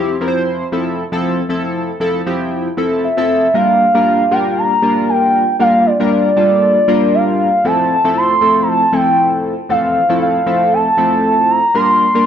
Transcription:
0.00 0.16 F3 medium
0.00 0.16 C4 medium
0.00 0.16 E4 medium
0.00 0.16 G4 loud
0.21 0.63 F3 loud
0.21 0.63 C4 medium
0.21 0.63 E4 medium
0.21 0.28 A#4 medium
0.28 0.66 C5 loud
0.72 1.03 F3 medium
0.72 1.03 C4 medium
0.72 1.03 E4 medium
0.72 1.04 A4 medium
1.12 1.42 F3 loud
1.12 1.42 C4 medium
1.12 1.42 E4 medium
1.12 1.42 A4 loud
1.49 1.91 F3 medium
1.49 1.91 C4 medium
1.49 1.91 E4 medium
1.49 1.91 A4 loud
2.00 2.21 F3 medium
2.00 2.21 C4 medium
2.00 2.22 E4 medium
2.00 2.22 A4 loud
2.26 2.68 F3 loud
2.26 2.68 C4 medium
2.26 2.68 E4 medium
2.26 2.68 G4 medium
2.77 3.08 F3 medium
2.77 3.08 C4 medium
2.77 3.08 E4 medium
2.77 3.09 A4 medium
3.04 3.58 E5 medium
3.17 3.47 F3 medium
3.17 3.47 C4 loud
3.17 3.47 E4 medium
3.17 3.47 A4 loud
3.54 3.85 G3 medium
3.54 3.85 A#3 medium
3.54 3.85 D4 medium
3.54 3.85 F4 medium
3.54 3.86 A#4 medium
3.54 4.34 F5 loud
3.95 4.24 G3 medium
3.95 4.24 A#3 medium
3.95 4.24 D4 medium
3.95 4.25 F4 medium
3.95 4.25 A#4 medium
4.31 4.73 G3 medium
4.31 4.73 A#3 medium
4.31 4.73 D4 medium
4.31 4.73 F4 medium
4.31 4.73 A#4 medium
4.31 4.60 G5 medium
4.58 5.09 A#5 loud
4.82 5.44 G3 medium
4.82 5.44 A#3 medium
4.82 5.44 D4 medium
4.82 5.45 F4 medium
4.82 5.45 A#4 medium
5.09 5.56 G5 medium
5.59 5.90 G3 medium
5.59 5.91 A#3 medium
5.59 5.91 D4 medium
5.59 5.91 F4 medium
5.59 5.91 A#4 medium
5.59 5.88 F5 loud
5.86 6.11 D5 medium
6.00 6.29 G3 medium
6.00 6.29 A#3 medium
6.00 6.30 D4 medium
6.00 6.30 F4 medium
6.00 6.30 A#4 medium
6.12 7.16 D5 loud
6.37 6.78 G3 medium
6.37 6.78 A#3 medium
6.37 6.78 D4 medium
6.37 6.79 F4 medium
6.37 6.79 A4 medium
6.88 7.50 G3 loud
6.88 7.50 A#3 medium
6.88 7.50 D4 medium
6.88 7.50 F4 medium
6.88 7.50 A#4 medium
7.15 7.67 F5 medium
7.65 7.95 F3 medium
7.65 7.96 A3 medium
7.65 7.96 C4 medium
7.65 7.96 E4 medium
7.65 7.96 A4 medium
7.65 8.17 A5 loud
8.04 8.34 F3 medium
8.04 8.34 A3 medium
8.04 8.34 C4 medium
8.04 8.35 E4 medium
8.04 8.35 A4 medium
8.17 8.64 C6 loud
8.41 8.83 F3 medium
8.41 8.83 A3 medium
8.41 8.83 C4 medium
8.41 8.83 E4 medium
8.41 8.84 A4 medium
8.62 8.70 A#5 medium
8.68 8.95 A5 loud
8.92 9.54 F3 medium
8.92 9.54 A3 medium
8.92 9.55 C4 medium
8.92 9.55 E4 medium
8.92 9.55 A4 medium
8.92 9.45 G5 loud
9.69 10.01 E3 medium
9.69 10.00 F3 medium
9.69 10.01 A3 medium
9.69 10.01 C4 medium
9.69 10.01 A4 medium
9.69 10.18 F5 loud
10.09 10.39 F3 medium
10.09 10.39 A3 medium
10.09 10.39 C4 medium
10.09 10.40 E4 medium
10.09 10.40 A4 medium
10.22 10.75 F5 medium
10.46 10.88 F3 medium
10.46 10.88 A3 medium
10.46 10.88 C4 medium
10.46 10.89 E4 medium
10.46 10.89 A4 medium
10.74 11.52 A5 loud
10.97 11.59 F3 medium
10.97 11.60 A3 medium
10.97 11.60 C4 medium
10.97 11.60 E4 medium
10.97 11.60 A4 medium
11.50 11.77 A#5 loud
11.74 12.06 G3 medium
11.74 12.06 A#3 medium
11.74 12.06 D4 medium
11.74 12.06 F4 medium
11.74 12.06 A#4 medium
11.74 12.26 C6 loud
12.15 12.26 G3 medium
12.15 12.26 A#3 medium
12.15 12.26 D4 medium
12.15 12.26 F4 medium
12.15 12.26 A#4 medium

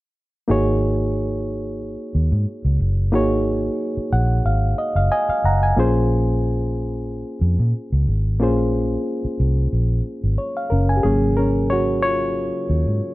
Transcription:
0.48 1.95 G#1 medium
0.48 3.08 A#3 medium
0.48 3.09 D#4 medium
0.48 3.09 F#4 medium
0.48 3.10 G#4 medium
0.48 3.10 C#5 medium
2.15 2.30 D#2 medium
2.32 2.45 G#2 medium
2.65 2.78 C#2 medium
2.80 3.13 F#1 medium
3.12 3.68 G#1 medium
3.12 5.72 A#3 medium
3.12 5.73 D#4 medium
3.12 5.73 F#4 medium
3.12 5.74 G#4 medium
3.12 5.74 C#5 medium
3.97 muted fingered electric bass stroke soft
4.12 4.40 A#1 medium
4.12 4.43 F#5 medium
4.45 4.73 G#1 medium
4.45 4.76 F5 medium
4.78 4.95 D#5 medium
4.95 5.08 F#1 medium
4.95 5.10 F5 medium
5.12 5.28 D#5 medium
5.12 5.42 G#5 medium
5.29 5.44 F5 medium
5.29 muted fingered electric bass stroke soft
5.44 5.72 F#1 medium
5.44 5.62 F#5 medium
5.44 5.75 A#5 medium
5.63 5.94 G#5 medium
5.76 7.23 A#1 medium
5.76 8.36 A#3 medium
5.76 8.37 C#4 medium
5.76 8.37 F4 medium
5.76 8.38 G#4 medium
5.76 8.38 C5 medium
7.41 7.56 F2 medium
7.59 7.72 A#2 medium
7.92 8.05 C#2 medium
8.07 8.41 G#1 medium
8.40 8.96 A#1 medium
8.40 10.34 A#3 medium
8.40 10.34 C#4 medium
8.40 10.35 F4 medium
8.40 10.35 G#4 medium
8.40 10.36 C5 medium
9.25 muted fingered electric bass stroke soft
9.40 9.67 C2 medium
9.73 10.00 A#1 medium
10.24 10.36 G#1 medium
10.38 10.55 C#5 medium
10.57 10.88 F5 medium
10.70 10.99 F#1 medium
10.70 10.97 C#4 medium
10.70 10.98 A#4 medium
10.89 11.21 G#5 medium
10.97 11.04 G4 medium
11.03 12.50 G#1 medium
11.03 11.49 C#3 soft
11.03 11.49 F#3 soft
11.03 11.50 A#3 medium
11.03 11.36 C#4 medium
11.03 11.38 G#4 medium
11.37 11.69 C#4 medium
11.37 11.71 A#4 medium
11.70 11.87 F#4 medium
11.70 11.85 C#5 medium
12.03 13.14 F4 medium
12.03 13.14 C#5 medium
12.70 12.84 D#2 medium
12.87 13.00 G#2 medium

